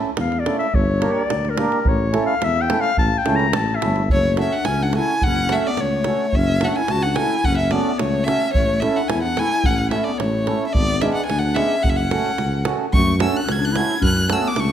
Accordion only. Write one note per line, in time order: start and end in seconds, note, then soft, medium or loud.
0.00 0.10 A3 medium
0.00 0.10 C#4 medium
0.00 0.10 E4 medium
0.00 0.11 A4 medium
0.46 0.66 A3 medium
0.46 0.66 C#4 soft
0.46 0.67 E4 medium
0.46 0.67 A4 medium
1.00 1.22 A#3 medium
1.00 1.22 D4 medium
1.00 1.22 G4 medium
1.00 1.22 A#4 medium
1.58 1.78 A#3 medium
1.58 1.79 D4 medium
1.58 1.79 G4 medium
1.58 1.79 A#4 medium
2.12 2.34 A3 medium
2.12 2.34 C#4 medium
2.12 2.34 E4 medium
2.12 2.35 A4 medium
2.70 2.91 A3 medium
2.70 2.91 C#4 medium
2.70 2.92 E4 medium
2.70 2.91 A4 medium
3.25 3.46 A3 medium
3.25 3.46 C#4 medium
3.25 3.46 E4 medium
3.25 3.47 A4 medium
3.81 4.02 A3 medium
3.81 4.02 C#4 medium
3.81 4.02 E4 medium
3.81 4.03 A4 medium
4.35 4.57 A3 medium
4.35 4.57 C#4 medium
4.35 4.58 F#4 medium
4.35 4.58 A4 medium
4.93 5.14 A3 medium
4.93 5.14 C#4 medium
4.93 5.14 F#4 medium
4.93 5.14 A4 medium
5.49 5.69 A3 medium
5.49 5.69 C#4 medium
5.49 5.70 F#4 medium
5.49 5.70 A4 medium
6.05 6.25 A3 medium
6.05 6.26 C#4 soft
6.05 6.26 F#4 medium
6.05 6.26 A4 medium
6.59 6.80 A3 medium
6.59 6.81 C#4 medium
6.59 6.81 F#4 medium
6.59 6.81 A4 medium
7.15 7.36 A3 medium
7.15 7.36 C#4 soft
7.15 7.36 F#4 soft
7.15 7.37 A4 medium
7.70 7.91 A3 medium
7.70 7.91 C#4 medium
7.70 7.91 F#4 medium
7.70 7.91 A4 medium
8.25 8.46 A3 soft
8.25 8.47 C#4 soft
8.25 8.47 F#4 soft
8.25 8.47 A4 medium
8.81 9.01 A3 medium
8.81 9.01 C#4 medium
8.81 9.02 E4 medium
8.81 9.02 A4 medium
9.36 9.57 A3 medium
9.36 9.57 C#4 medium
9.36 9.57 E4 medium
9.36 9.58 A4 medium
9.89 10.11 A3 medium
9.89 10.11 C#4 medium
9.89 10.12 E4 medium
9.89 10.12 A4 medium
10.45 10.66 A3 medium
10.45 10.66 C#4 medium
10.45 10.67 E4 soft
10.45 10.67 A4 medium
11.00 11.21 G#3 medium
11.00 11.21 B3 medium
11.00 11.22 D4 medium
11.00 11.22 G#4 medium
11.54 11.75 G#3 medium
11.54 11.75 B3 medium
11.54 11.76 D4 soft
11.54 11.76 G#4 medium
12.10 12.30 A3 medium
12.10 12.31 C#4 medium
12.10 12.31 F#4 medium
12.10 12.32 A4 medium
12.65 12.86 A3 medium
12.65 12.86 C#4 medium
12.65 12.86 F#4 medium
12.65 12.87 A4 medium
13.19 13.39 A3 medium
13.19 13.40 C#4 medium
13.19 13.40 F#4 medium
13.19 13.41 A4 medium
13.74 13.94 A3 medium
13.74 13.95 C#4 medium
13.74 13.95 F#4 soft
13.74 13.95 A4 medium
14.28 14.48 A3 medium
14.28 14.49 C#4 medium
14.28 14.49 F#4 medium
14.28 14.50 A4 medium